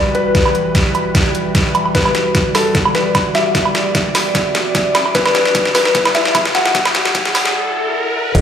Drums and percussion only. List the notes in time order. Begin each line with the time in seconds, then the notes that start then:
0.15 closed hi-hat
0.35 kick, snare, closed hi-hat
0.46 low woodblock
0.55 closed hi-hat
0.75 kick, snare, closed hi-hat
0.95 closed hi-hat, low woodblock
1.15 kick, snare, closed hi-hat
1.35 closed hi-hat
1.55 kick, snare, closed hi-hat
1.75 closed hi-hat, low woodblock
1.85 low woodblock
1.95 kick, snare, closed hi-hat
2.05 low woodblock
2.15 snare, closed hi-hat
2.35 kick, snare, closed hi-hat
2.55 snare, open hi-hat, low woodblock
2.75 kick, snare, closed hi-hat
2.85 low woodblock
2.95 snare, closed hi-hat
3.15 kick, snare, closed hi-hat, low woodblock
3.35 snare, closed hi-hat
3.55 kick, snare, closed hi-hat
3.65 low woodblock
3.75 snare, closed hi-hat
3.95 kick, snare, closed hi-hat
4.15 snare, open hi-hat, low woodblock
4.35 kick, snare, closed hi-hat
4.55 snare, closed hi-hat
4.75 kick, snare, closed hi-hat
4.95 snare, closed hi-hat, low woodblock
5.06 low woodblock
5.15 kick, snare, closed hi-hat
5.26 snare, low woodblock
5.35 snare, closed hi-hat
5.45 snare
5.55 kick, snare, closed hi-hat
5.65 snare
5.75 snare, open hi-hat, low woodblock
5.85 snare
5.95 kick, snare, closed hi-hat
6.05 snare, low woodblock
6.15 snare, closed hi-hat
6.25 snare
6.35 kick, snare, closed hi-hat, low woodblock
6.45 snare
6.55 snare, closed hi-hat
6.66 snare
6.75 kick, snare, closed hi-hat
6.85 snare, low woodblock
6.95 snare, closed hi-hat
7.05 snare
7.15 kick, snare, closed hi-hat
7.25 snare
7.35 snare, open hi-hat, low woodblock
7.46 snare
8.35 kick, closed hi-hat, crash